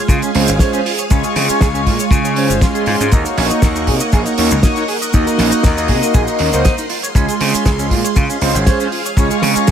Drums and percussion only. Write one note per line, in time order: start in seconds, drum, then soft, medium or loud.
0.08 kick loud
0.08 closed hi-hat medium
0.08 cabasa medium
0.22 closed hi-hat soft
0.22 cabasa soft
0.35 open hi-hat loud
0.48 closed hi-hat medium
0.48 cabasa medium
0.59 kick loud
0.59 snare loud
0.59 closed hi-hat medium
0.59 cabasa medium
0.73 closed hi-hat soft
0.73 cabasa soft
0.86 open hi-hat loud
0.98 closed hi-hat medium
0.98 cabasa medium
1.10 kick loud
1.10 closed hi-hat medium
1.10 cabasa medium
1.24 closed hi-hat soft
1.24 cabasa soft
1.36 snare medium
1.36 open hi-hat loud
1.49 closed hi-hat medium
1.49 cabasa medium
1.61 kick loud
1.61 snare loud
1.61 closed hi-hat medium
1.61 cabasa medium
1.75 closed hi-hat soft
1.75 cabasa soft
1.86 kick medium
1.86 open hi-hat medium
2.00 closed hi-hat medium
2.00 cabasa medium
2.11 kick loud
2.11 closed hi-hat medium
2.11 cabasa medium
2.25 closed hi-hat soft
2.25 cabasa medium
2.36 open hi-hat loud
2.50 closed hi-hat medium
2.50 cabasa medium
2.61 kick loud
2.61 snare loud
2.61 closed hi-hat medium
2.61 cabasa medium
2.75 closed hi-hat soft
2.75 cabasa soft
2.86 open hi-hat medium
3.00 closed hi-hat medium
3.00 cabasa medium
3.12 kick loud
3.12 closed hi-hat medium
3.12 cabasa medium
3.25 closed hi-hat soft
3.25 cabasa medium
3.38 open hi-hat loud
3.50 closed hi-hat medium
3.50 cabasa medium
3.62 kick loud
3.62 snare loud
3.62 closed hi-hat medium
3.62 cabasa medium
3.76 closed hi-hat soft
3.76 cabasa soft
3.87 kick medium
3.87 open hi-hat medium
4.00 closed hi-hat medium
4.00 cabasa medium
4.12 kick loud
4.12 closed hi-hat medium
4.12 cabasa medium
4.26 closed hi-hat soft
4.26 cabasa medium
4.38 open hi-hat loud
4.51 closed hi-hat medium
4.51 cabasa medium
4.63 kick loud
4.63 snare loud
4.63 closed hi-hat medium
4.63 cabasa medium
4.76 closed hi-hat soft
4.76 cabasa medium
4.88 open hi-hat medium
5.02 closed hi-hat medium
5.02 cabasa medium
5.13 kick loud
5.13 closed hi-hat medium
5.13 cabasa medium
5.27 closed hi-hat soft
5.27 cabasa medium
5.38 snare medium
5.38 open hi-hat loud
5.52 closed hi-hat medium
5.52 cabasa medium
5.63 kick loud
5.63 snare loud
5.63 closed hi-hat medium
5.63 cabasa medium
5.78 closed hi-hat soft
5.78 cabasa soft
5.88 kick medium
5.88 open hi-hat medium
6.03 closed hi-hat medium
6.03 cabasa medium
6.14 kick loud
6.14 closed hi-hat medium
6.14 cabasa medium
6.27 closed hi-hat soft
6.27 cabasa medium
6.39 open hi-hat loud
6.53 closed hi-hat medium
6.53 cabasa medium
6.65 kick loud
6.65 snare loud
6.65 closed hi-hat medium
6.65 cabasa medium
6.78 closed hi-hat soft
6.78 cabasa soft
6.89 open hi-hat medium
7.04 closed hi-hat medium
7.04 cabasa medium
7.15 kick loud
7.15 closed hi-hat medium
7.15 cabasa medium
7.29 closed hi-hat soft
7.29 cabasa soft
7.41 open hi-hat loud
7.54 closed hi-hat medium
7.54 cabasa medium
7.66 kick loud
7.66 snare loud
7.66 closed hi-hat medium
7.66 cabasa medium
7.79 closed hi-hat soft
7.79 cabasa soft
7.90 kick medium
7.90 open hi-hat loud
8.04 closed hi-hat medium
8.04 cabasa medium
8.16 kick loud
8.16 closed hi-hat medium
8.16 cabasa medium
8.30 closed hi-hat soft
8.30 cabasa medium
8.41 open hi-hat loud
8.55 closed hi-hat medium
8.55 cabasa medium
8.66 kick loud
8.66 snare loud
8.66 closed hi-hat medium
8.66 cabasa medium
8.80 closed hi-hat soft
8.80 cabasa medium
8.92 open hi-hat medium
9.05 closed hi-hat medium
9.05 cabasa medium
9.17 kick loud
9.17 closed hi-hat medium
9.17 cabasa medium
9.31 closed hi-hat soft
9.31 cabasa medium
9.42 snare medium
9.42 open hi-hat loud
9.56 closed hi-hat medium
9.56 cabasa medium
9.67 snare loud
9.67 closed hi-hat medium
9.67 cabasa medium